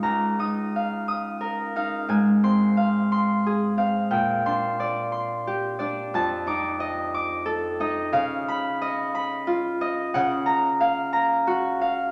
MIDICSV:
0, 0, Header, 1, 2, 480
1, 0, Start_track
1, 0, Tempo, 690449
1, 23, Time_signature, 6, 3, 24, 8
1, 2422, Tempo, 662983
1, 6742, Tempo, 681818
1, 8618, End_track
2, 0, Start_track
2, 0, Title_t, "Harp"
2, 0, Program_c, 0, 46
2, 0, Note_on_c, 0, 61, 41
2, 0, Note_on_c, 0, 63, 39
2, 0, Note_on_c, 0, 65, 41
2, 19, Note_on_c, 0, 82, 55
2, 20, Note_on_c, 0, 37, 49
2, 264, Note_off_c, 0, 63, 0
2, 273, Note_on_c, 0, 63, 49
2, 277, Note_on_c, 0, 87, 59
2, 527, Note_on_c, 0, 77, 49
2, 743, Note_off_c, 0, 87, 0
2, 751, Note_on_c, 0, 87, 55
2, 807, Note_off_c, 0, 61, 0
2, 978, Note_on_c, 0, 70, 50
2, 1214, Note_off_c, 0, 63, 0
2, 1219, Note_off_c, 0, 77, 0
2, 1222, Note_on_c, 0, 63, 47
2, 1227, Note_on_c, 0, 77, 52
2, 1450, Note_on_c, 0, 44, 54
2, 1457, Note_on_c, 0, 80, 55
2, 1492, Note_off_c, 0, 37, 0
2, 1692, Note_on_c, 0, 60, 48
2, 1695, Note_on_c, 0, 84, 69
2, 1918, Note_off_c, 0, 77, 0
2, 1926, Note_on_c, 0, 77, 53
2, 2159, Note_off_c, 0, 84, 0
2, 2168, Note_on_c, 0, 84, 59
2, 2189, Note_off_c, 0, 65, 0
2, 2409, Note_on_c, 0, 68, 55
2, 2625, Note_off_c, 0, 60, 0
2, 2625, Note_off_c, 0, 77, 0
2, 2632, Note_on_c, 0, 60, 41
2, 2635, Note_on_c, 0, 77, 50
2, 2744, Note_off_c, 0, 82, 0
2, 2873, Note_on_c, 0, 46, 57
2, 2874, Note_on_c, 0, 79, 55
2, 2911, Note_off_c, 0, 44, 0
2, 2912, Note_off_c, 0, 80, 0
2, 2915, Note_off_c, 0, 68, 0
2, 2917, Note_off_c, 0, 63, 0
2, 2919, Note_off_c, 0, 87, 0
2, 3119, Note_off_c, 0, 84, 0
2, 3127, Note_on_c, 0, 62, 47
2, 3130, Note_on_c, 0, 84, 73
2, 3373, Note_on_c, 0, 74, 53
2, 3598, Note_off_c, 0, 84, 0
2, 3606, Note_on_c, 0, 84, 61
2, 3742, Note_off_c, 0, 70, 0
2, 3862, Note_on_c, 0, 67, 58
2, 4082, Note_off_c, 0, 74, 0
2, 4088, Note_off_c, 0, 62, 0
2, 4090, Note_on_c, 0, 74, 53
2, 4097, Note_on_c, 0, 62, 53
2, 4345, Note_on_c, 0, 41, 60
2, 4351, Note_on_c, 0, 81, 64
2, 4352, Note_off_c, 0, 46, 0
2, 4581, Note_on_c, 0, 63, 54
2, 4588, Note_on_c, 0, 86, 70
2, 4823, Note_on_c, 0, 75, 57
2, 5064, Note_off_c, 0, 86, 0
2, 5072, Note_on_c, 0, 86, 65
2, 5298, Note_on_c, 0, 69, 67
2, 5456, Note_off_c, 0, 60, 0
2, 5459, Note_off_c, 0, 77, 0
2, 5540, Note_off_c, 0, 63, 0
2, 5543, Note_off_c, 0, 75, 0
2, 5548, Note_on_c, 0, 63, 60
2, 5551, Note_on_c, 0, 75, 60
2, 5698, Note_off_c, 0, 79, 0
2, 5782, Note_on_c, 0, 49, 70
2, 5785, Note_on_c, 0, 77, 69
2, 5788, Note_off_c, 0, 74, 0
2, 5788, Note_off_c, 0, 84, 0
2, 5791, Note_off_c, 0, 62, 0
2, 5794, Note_off_c, 0, 69, 0
2, 5795, Note_off_c, 0, 67, 0
2, 5796, Note_off_c, 0, 41, 0
2, 5799, Note_off_c, 0, 81, 0
2, 5801, Note_off_c, 0, 86, 0
2, 6042, Note_on_c, 0, 83, 81
2, 6273, Note_off_c, 0, 75, 0
2, 6282, Note_on_c, 0, 75, 65
2, 6514, Note_off_c, 0, 83, 0
2, 6522, Note_on_c, 0, 83, 73
2, 6756, Note_on_c, 0, 65, 63
2, 6987, Note_off_c, 0, 75, 0
2, 6996, Note_on_c, 0, 75, 62
2, 7225, Note_off_c, 0, 49, 0
2, 7228, Note_on_c, 0, 78, 76
2, 7234, Note_on_c, 0, 49, 75
2, 7237, Note_off_c, 0, 63, 0
2, 7242, Note_off_c, 0, 75, 0
2, 7243, Note_off_c, 0, 83, 0
2, 7452, Note_on_c, 0, 82, 80
2, 7687, Note_off_c, 0, 77, 0
2, 7696, Note_on_c, 0, 77, 64
2, 7914, Note_off_c, 0, 82, 0
2, 7922, Note_on_c, 0, 82, 78
2, 8166, Note_on_c, 0, 66, 75
2, 8398, Note_off_c, 0, 77, 0
2, 8406, Note_on_c, 0, 77, 61
2, 8618, Note_off_c, 0, 49, 0
2, 8618, Note_off_c, 0, 65, 0
2, 8618, Note_off_c, 0, 66, 0
2, 8618, Note_off_c, 0, 77, 0
2, 8618, Note_off_c, 0, 78, 0
2, 8618, Note_off_c, 0, 82, 0
2, 8618, End_track
0, 0, End_of_file